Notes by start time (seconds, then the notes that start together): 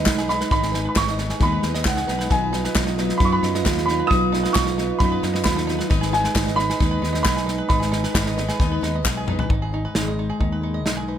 Already playing: D#4 B4 D#5 B5
0.05 B1 G#3 B3 D#4 B4, kick, snare, clap
0.18 G#4, snare
0.28 G#3 B3 D#4 B4 B5, snare
0.41 B4, snare
0.50 G#1 G#2 D#3 G#3 B3 D#4 B4 B5, kick, snare
0.63 G#4, snare
0.72 G#3 B3 D#4 B4, snare
0.85 B4 B5
0.95 G#1 G#3 B3 D#4 B4 C#6, kick, snare, clap
1.07 D#5, snare
1.18 G#3 B3 D#4 B4, snare
1.29 G#4, snare
1.40 D#2 G#2 D#3 G#3 B3 D#4 B4 B5, kick, snare
1.52 B4
1.63 D#2 G#3 B3 D#4 B4, snare
1.74 D#5, snare
1.85 C#2 G#3 B3 D#4 B4 F#5, kick, snare, clap
1.97 G#4, snare
2.07 B1 G#3 B3 D#4 B4, snare
2.19 B4, snare
2.29 B1 B2 D#3 F#3 B3 D#4 F4 B4 G#5, kick, snare
2.52 F#3 B3 D#4 B4, snare
2.64 B4, snare
2.75 B1 B3 D#4 B4, kick, snare, clap
2.87 D#5, snare
2.98 F#3 B3 D#4 B4, snare
3.09 snare
3.18 F#2 B2 D#3 F#3 D#4 B5, kick, snare
3.22 B3 D#4 B4 C#6
3.32 B4 B5
3.43 F#2 F#3 B3 D#4 B4, snare
3.55 D#5, snare
3.66 D#2 F#3 B3 D#4 B4, kick, snare, clap
3.78 snare
3.86 D#4 B4 B5, snare
3.90 F#3 B3 D#4
4.00 B4
4.07 B2 D#4 D#6, kick, snare
4.11 B1 D#3 F#3 B3 D#4 B4
4.32 F#3 B3 D#4 B4, snare
4.43 B4, snare
4.53 B1 F#3 D#4 C#6, kick, snare, clap
4.58 D#4 B4
4.67 D#5, snare
4.78 F#3 B3 D#4 B4, snare
4.99 F#2 B2 D#3 F#3 B3 D#4 B5, kick, snare
5.03 B4
5.12 B4
5.22 F#2 F#3 B3 D#4 B4, snare
5.34 D#5, snare
5.44 D#2 F#3 B3 D#4 B4 B5, kick, snare, clap
5.56 D#4, snare
5.67 F#3 B3 D#4 B4, snare
5.79 B4, snare
5.89 G#1 G#2 D#3 G#3 B3 D#4 B4, kick, snare
6.01 G#4, snare
6.12 G#3 B3 D#4 B4 G#5, snare
6.24 B4, snare
6.34 G#1 G#3 B3 D#4 B4, kick, snare, clap
6.46 D#5, snare
6.56 G#3 B3 D#4 B4 B5, snare
6.70 G#4, snare
6.79 D#2 G#2 D#3 G#3 B3 D#4 B4, kick, snare
6.91 B4
7.02 D#2 G#3 B3 D#4 B4, snare
7.13 D#5, snare
7.23 B1 G#3 B3 D#4 B4 B5, kick, snare, clap
7.36 G#4, snare
7.46 G#3 B3 D#4 B4, snare
7.58 B4
7.68 G#1 G#2 D#3 G#3 B3 D#4 B4 B5, kick, snare
7.80 G#4, snare
7.92 B3 D#4 B4, snare
8.04 B4, snare
8.14 G#1 G#3 B3 D#4 B4, kick, snare, clap
8.26 D#5, snare
8.37 G#3 B3 D#4 B4, snare
8.48 G#4, snare
8.59 D#2 G#2 D#3 G#3 B3 D#4 B4, kick, snare
8.72 B4
8.81 D#2 G#3 B3 D#4 B4, snare
8.95 D#5
9.03 B1 G#3 B3 D#4 B4, kick, snare, clap
9.17 G#4
9.26 G#3 B3 D#4 B4, mid tom
9.39 B4, floor tom
9.49 G#1 G#2 D#4, kick
9.62 G#4
9.73 D#4
9.85 B4
9.95 G#1 G#3 D#4, snare
10.08 D#5
10.18 D#4
10.30 G#4
10.40 D#2 D#3 D#4, kick
10.52 B4
10.61 G#3 D#4
10.74 D#5
10.85 B1 D#4, snare
10.97 G#4
11.08 D#4 B4